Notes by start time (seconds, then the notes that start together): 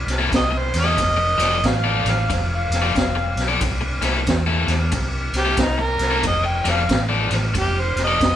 0.07 C2, snare, ride
0.18 C3 A#3 E4 A4
0.31 C2, muted overdriven electric guitar stroke, kick, snare, ride
0.36 D#5
0.51 muted overdriven electric guitar stroke
0.58 C5
0.74 E2, snare, ride
0.80 D#5
0.84 C3 A#3 E4 A4
0.98 F1, kick, snare, ride
1.17 muted overdriven electric guitar stroke
1.38 F1 F3 D#4 A4 D5, snare, ride
1.64 A1 F5, kick, snare, ride
1.84 F3 D#4 A4 D5
2.05 A1, snare, ride
2.30 F1, muted overdriven electric guitar stroke, kick, snare, ride
2.55 F5
2.70 F1, snare, ride
2.82 F3 D#4 A4 D5
2.95 F1, muted overdriven electric guitar stroke, kick, snare, ride
3.15 muted overdriven electric guitar stroke
3.36 B1, snare, ride
3.48 F3 D#4 A4 D5
3.61 C2, kick, snare, ride
3.81 muted overdriven electric guitar stroke
4.01 C2 C3 A#3 E4 A4, snare, ride
4.26 E2, kick, snare, ride
4.47 C3 A#3 E4 A4
4.68 E2, snare, ride
4.92 C2, muted overdriven electric guitar stroke, kick, snare, ride
5.33 C2, snare, ride
5.38 G4
5.45 C3 A#3 E4 A4
5.57 C2 D#4, muted overdriven electric guitar stroke, kick, snare, ride
5.78 muted overdriven electric guitar stroke
5.82 A#4
5.99 C2, snare, ride
6.11 C3 A#3 E4 A4
6.23 F1 D#5, kick, snare, ride
6.44 G5, muted overdriven electric guitar stroke
6.64 F1 F3 D#4 A4 D5, snare, ride
6.70 F5
6.89 A1, kick, snare, ride
7.09 F3 D#4 A4 D5
7.31 A1, snare, ride
7.54 F1, muted overdriven electric guitar stroke, kick, snare, ride
7.59 G4
7.81 C5
7.96 F1, snare, ride
8.04 D5 D#5
8.08 F3 D#4 A4
8.20 F1, muted overdriven electric guitar stroke, kick, snare, ride